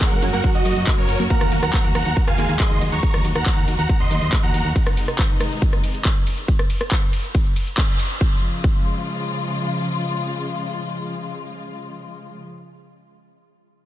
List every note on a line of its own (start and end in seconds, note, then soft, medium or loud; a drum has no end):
0.00 1.26 C#3 medium
0.00 4.72 F#3 medium
0.00 0.14 G#3 medium
0.00 4.72 A#3 medium
0.00 0.04 A#3 medium
0.00 4.72 F#4 medium
0.00 0.14 G#4 loud
0.00 0.23 A#4 medium
0.00 0.23 F#5 loud
0.00 kick loud
0.00 clap loud
0.00 closed hi-hat medium
0.00 ride medium
0.00 shaker soft
0.11 0.19 F#2 medium
0.11 0.17 A#4 medium
0.11 closed hi-hat soft
0.11 shaker soft
0.22 0.30 F#2 loud
0.22 0.79 F#3 medium
0.22 0.28 C#4 loud
0.22 0.79 F#4 medium
0.22 open hi-hat loud
0.22 ride medium
0.22 shaker medium
0.33 0.41 F#2 medium
0.33 0.41 A#3 loud
0.33 0.50 A#4 medium
0.33 0.50 F#5 medium
0.33 closed hi-hat medium
0.33 shaker soft
0.44 0.49 C#5 medium
0.44 kick loud
0.44 closed hi-hat medium
0.44 ride medium
0.44 shaker soft
0.55 0.63 F#1 medium
0.55 0.88 F#4 medium
0.55 0.58 F#4 loud
0.55 0.88 D#5 loud
0.55 closed hi-hat soft
0.55 shaker soft
0.65 0.73 F#2 loud
0.65 0.71 F#4 medium
0.65 open hi-hat loud
0.65 ride medium
0.65 shaker medium
0.76 0.84 F#2 medium
0.76 0.81 F#4 medium
0.76 closed hi-hat medium
0.76 shaker soft
0.87 0.90 A#3 medium
0.87 kick loud
0.87 clap loud
0.87 closed hi-hat medium
0.87 ride medium
0.87 shaker soft
0.98 1.06 F#2 medium
0.98 1.03 A#4 medium
0.98 1.23 A#4 medium
0.98 1.23 C#5 medium
0.98 closed hi-hat soft
0.98 shaker soft
1.09 1.16 F#1 loud
1.09 1.14 A#5 medium
1.09 open hi-hat loud
1.09 ride medium
1.09 shaker medium
1.19 1.27 F#2 loud
1.19 1.27 A#3 loud
1.19 closed hi-hat soft
1.19 shaker soft
1.30 6.44 D#3 medium
1.30 1.71 A#3 medium
1.30 1.33 A#3 medium
1.30 1.71 A#4 loud
1.30 1.55 F#5 medium
1.30 1.55 A#5 loud
1.30 kick loud
1.30 closed hi-hat medium
1.30 ride medium
1.30 shaker soft
1.41 1.49 D#2 medium
1.41 1.46 A#3 loud
1.41 cross-stick medium
1.41 closed hi-hat soft
1.41 shaker soft
1.52 1.60 D#2 loud
1.52 1.57 A#3 loud
1.52 open hi-hat loud
1.52 ride medium
1.52 shaker medium
1.63 1.70 D#2 medium
1.63 1.87 F#5 medium
1.63 1.87 A#5 loud
1.63 1.68 A#5 medium
1.63 cross-stick medium
1.63 closed hi-hat medium
1.63 shaker soft
1.73 1.77 A#3 medium
1.73 kick loud
1.73 clap loud
1.73 closed hi-hat medium
1.73 ride medium
1.73 shaker soft
1.84 1.92 D#2 medium
1.84 1.89 A#4 loud
1.84 closed hi-hat soft
1.84 shaker soft
1.95 2.03 D#2 loud
1.95 1.98 A#3 medium
1.95 2.20 F#5 medium
1.95 2.20 A#5 loud
1.95 cross-stick medium
1.95 open hi-hat loud
1.95 ride medium
1.95 shaker medium
2.06 2.14 D#2 medium
2.06 2.09 F#5 medium
2.06 closed hi-hat medium
2.06 shaker soft
2.17 2.20 A#4 medium
2.17 kick loud
2.17 closed hi-hat medium
2.17 ride medium
2.17 shaker soft
2.27 2.35 D#1 medium
2.27 2.33 A#3 loud
2.27 2.52 F5 medium
2.27 2.52 G#5 loud
2.27 cross-stick medium
2.27 shaker soft
2.38 2.46 D#2 loud
2.38 2.94 G#3 medium
2.38 2.43 A#3 loud
2.38 2.94 G#4 medium
2.38 open hi-hat loud
2.38 ride medium
2.38 shaker medium
2.49 2.57 D#2 medium
2.49 2.54 A#5 medium
2.49 closed hi-hat medium
2.49 shaker soft
2.60 2.63 A#3 medium
2.60 2.84 D#5 medium
2.60 2.84 C6 loud
2.60 kick loud
2.60 clap loud
2.60 closed hi-hat medium
2.60 ride medium
2.60 shaker soft
2.71 2.78 D#2 medium
2.71 2.76 A#4 medium
2.71 closed hi-hat soft
2.71 shaker soft
2.81 2.89 D#2 loud
2.81 2.86 D#5 medium
2.81 open hi-hat loud
2.81 ride medium
2.81 shaker medium
2.92 3.00 D#2 loud
2.92 2.95 F#5 medium
2.92 3.25 A#5 medium
2.92 3.25 C#6 loud
2.92 closed hi-hat medium
2.92 shaker soft
3.03 kick loud
3.03 closed hi-hat medium
3.03 ride medium
3.03 shaker soft
3.14 3.22 D#2 medium
3.14 cross-stick medium
3.14 closed hi-hat soft
3.14 shaker soft
3.25 3.32 D#2 loud
3.25 open hi-hat loud
3.25 ride medium
3.25 shaker medium
3.35 3.43 D#2 loud
3.35 3.68 F#5 medium
3.35 3.68 A#5 loud
3.35 cross-stick medium
3.35 closed hi-hat medium
3.35 shaker soft
3.46 kick loud
3.46 clap loud
3.46 closed hi-hat medium
3.46 ride medium
3.46 shaker soft
3.57 3.65 D#2 medium
3.57 closed hi-hat soft
3.57 shaker soft
3.68 3.76 D#2 loud
3.68 open hi-hat loud
3.68 ride medium
3.68 shaker medium
3.78 3.86 D#2 medium
3.78 3.95 F#5 medium
3.78 3.95 A#5 medium
3.78 closed hi-hat medium
3.78 shaker soft
3.89 kick loud
3.89 closed hi-hat medium
3.89 ride medium
3.89 shaker soft
4.00 4.08 D#1 medium
4.00 4.33 D#5 medium
4.00 4.33 C6 loud
4.00 shaker soft
4.11 4.19 D#2 loud
4.11 open hi-hat loud
4.11 ride medium
4.11 shaker medium
4.22 4.30 D#2 medium
4.22 closed hi-hat medium
4.22 shaker soft
4.33 kick loud
4.33 clap loud
4.33 closed hi-hat medium
4.33 ride medium
4.33 shaker soft
4.43 4.51 D#2 medium
4.43 4.68 F#5 medium
4.43 4.68 A#5 medium
4.43 closed hi-hat soft
4.43 shaker soft
4.54 4.62 D#2 loud
4.54 open hi-hat loud
4.54 ride medium
4.54 shaker medium
4.65 4.73 D#2 loud
4.65 closed hi-hat medium
4.65 shaker soft
4.76 6.47 C3 medium
4.76 6.46 G#3 medium
4.76 6.46 D#4 medium
4.76 kick loud
4.76 closed hi-hat medium
4.76 ride medium
4.76 shaker soft
4.87 cross-stick medium
4.87 closed hi-hat soft
4.87 shaker soft
4.97 open hi-hat loud
4.97 ride medium
4.97 shaker medium
5.08 cross-stick medium
5.08 closed hi-hat medium
5.08 shaker soft
5.19 kick loud
5.19 clap loud
5.19 closed hi-hat medium
5.19 ride medium
5.19 shaker soft
5.30 closed hi-hat soft
5.30 shaker soft
5.40 cross-stick medium
5.40 open hi-hat loud
5.40 ride medium
5.40 shaker medium
5.51 closed hi-hat medium
5.51 shaker soft
5.62 kick loud
5.62 closed hi-hat medium
5.62 ride medium
5.62 shaker soft
5.73 cross-stick medium
5.73 shaker soft
5.84 open hi-hat loud
5.84 ride medium
5.84 shaker medium
5.94 closed hi-hat medium
5.94 shaker soft
6.05 kick loud
6.05 clap loud
6.05 closed hi-hat medium
6.05 ride medium
6.05 shaker soft
6.16 closed hi-hat soft
6.16 shaker soft
6.27 open hi-hat loud
6.27 ride medium
6.27 shaker medium
6.38 closed hi-hat medium
6.38 shaker soft
6.48 kick loud
6.48 closed hi-hat medium
6.48 ride medium
6.48 shaker soft
6.59 cross-stick medium
6.59 closed hi-hat soft
6.59 shaker soft
6.70 open hi-hat loud
6.70 ride medium
6.70 shaker medium
6.81 cross-stick medium
6.81 closed hi-hat medium
6.81 shaker soft
6.91 kick loud
6.91 clap loud
6.91 closed hi-hat medium
6.91 ride medium
6.91 shaker soft
7.02 closed hi-hat soft
7.02 shaker soft
7.13 open hi-hat loud
7.13 ride medium
7.13 shaker medium
7.24 closed hi-hat medium
7.24 shaker soft
7.35 kick loud
7.35 closed hi-hat medium
7.35 ride medium
7.35 shaker soft
7.45 closed hi-hat soft
7.45 shaker soft
7.56 open hi-hat loud
7.56 ride medium
7.56 shaker medium
7.67 closed hi-hat medium
7.67 shaker soft
7.78 kick loud
7.78 clap loud
7.78 closed hi-hat medium
7.78 ride medium
7.78 shaker soft
7.89 closed hi-hat soft
7.89 shaker soft
7.99 open hi-hat loud
7.99 ride medium
7.99 shaker medium
8.10 closed hi-hat medium
8.10 shaker soft
8.21 12.42 C#3 medium
8.21 12.42 F3 medium
8.21 12.42 G#3 medium
8.21 12.42 F4 medium
8.21 kick loud
8.64 kick loud